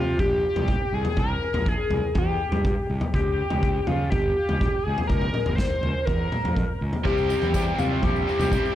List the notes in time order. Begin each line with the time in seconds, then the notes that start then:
Already playing: C2 G2 C3 F4
0.19 A#1 G4, kick, floor tom
0.56 C2, floor tom
0.68 kick, mid tom
0.93 C2 G#4
1.05 floor tom
1.17 C2 A#4, kick, floor tom
1.54 A#1, floor tom
1.66 G#4, kick
1.90 C2, floor tom
2.15 E2 G4, kick, floor tom
2.52 G2, floor tom
2.65 kick, mid tom
2.90 C2
3.01 floor tom
3.14 C#2 G4, kick, floor tom
3.50 C#2, floor tom
3.63 kick
3.87 C#3 F4, floor tom
4.10 G1 G4, kick, floor tom
4.49 C#2, floor tom
4.61 kick, mid tom
4.84 C#2 G#4
4.98 floor tom
5.07 C#2 A#4, kick, floor tom
5.21 floor tom
5.34 mid tom
5.46 G1, floor tom
5.55 C5, kick, snare
5.70 floor tom
5.83 C#2, floor tom
6.05 E2 A#4, kick, floor tom
6.32 mid tom
6.44 F2, floor tom
6.56 kick, mid tom
6.81 C#2
6.93 floor tom
7.04 C2 C3 G3 C4 E4 G4, kick, floor tom
7.18 tambourine
7.29 C4 E4 G4, tambourine
7.42 E2, floor tom, tambourine
7.53 G3 C4 E4 G4, kick, tambourine
7.67 tambourine
7.78 C3 F4, floor tom, tambourine
8.03 A#1 G4, kick, floor tom
8.16 tambourine
8.27 C4 E4 G4, tambourine
8.39 C2, floor tom, tambourine
8.51 C3 G3 C4 E4 G4, kick, mid tom, tambourine
8.65 tambourine